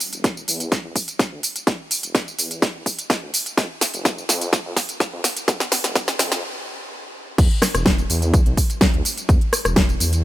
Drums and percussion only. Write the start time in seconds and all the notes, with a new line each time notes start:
0.00 open hi-hat, tambourine
0.13 closed hi-hat, tambourine
0.24 kick, snare, closed hi-hat, tambourine
0.37 tambourine
0.48 open hi-hat, tambourine
0.60 closed hi-hat, tambourine
0.72 kick, snare, closed hi-hat, tambourine
0.96 kick, open hi-hat, tambourine
1.08 closed hi-hat, tambourine
1.19 kick, snare, closed hi-hat, tambourine
1.43 open hi-hat, tambourine
1.56 closed hi-hat, tambourine
1.67 kick, snare, closed hi-hat, tambourine
1.91 open hi-hat, tambourine
2.03 closed hi-hat, tambourine
2.15 kick, snare, closed hi-hat, tambourine
2.28 tambourine
2.39 open hi-hat, tambourine
2.51 closed hi-hat, tambourine
2.62 kick, snare, closed hi-hat, tambourine
2.86 kick, open hi-hat, tambourine
2.99 closed hi-hat, tambourine
3.10 kick, snare, closed hi-hat, tambourine
3.34 open hi-hat, tambourine
3.46 closed hi-hat, tambourine
3.57 kick, snare, closed hi-hat, tambourine
3.81 snare, open hi-hat, tambourine
3.94 closed hi-hat, tambourine
4.05 kick, snare, closed hi-hat, tambourine
4.18 tambourine
4.29 snare, open hi-hat, tambourine
4.41 closed hi-hat, tambourine
4.53 kick, snare, closed hi-hat, tambourine
4.76 kick, snare, open hi-hat, tambourine
4.89 closed hi-hat, tambourine
5.00 kick, snare, closed hi-hat, tambourine
5.24 snare, open hi-hat, tambourine
5.37 closed hi-hat, tambourine
5.48 kick, snare, closed hi-hat, tambourine
5.60 snare
5.72 snare, open hi-hat, tambourine
5.84 snare, closed hi-hat, tambourine
5.96 kick, snare, closed hi-hat, tambourine
6.08 snare, tambourine
6.19 snare, open hi-hat, tambourine
6.32 snare, closed hi-hat, tambourine
7.38 kick, closed hi-hat, crash, tambourine
7.51 closed hi-hat
7.62 cross-stick, snare, open hi-hat, tambourine
7.75 cross-stick, closed hi-hat, tambourine
7.86 kick, snare, closed hi-hat, tambourine
7.98 closed hi-hat, tambourine
8.10 open hi-hat, tambourine
8.22 closed hi-hat, tambourine
8.34 kick, closed hi-hat, tambourine
8.46 closed hi-hat
8.57 kick, open hi-hat, tambourine
8.70 closed hi-hat, tambourine
8.81 kick, snare, closed hi-hat, tambourine
8.94 closed hi-hat
9.05 open hi-hat, tambourine
9.18 closed hi-hat, tambourine
9.29 kick, closed hi-hat, tambourine
9.41 closed hi-hat
9.53 cross-stick, open hi-hat, tambourine
9.65 cross-stick, closed hi-hat, tambourine
9.76 kick, snare, closed hi-hat, tambourine
9.89 closed hi-hat, tambourine
10.00 open hi-hat, tambourine
10.13 closed hi-hat, tambourine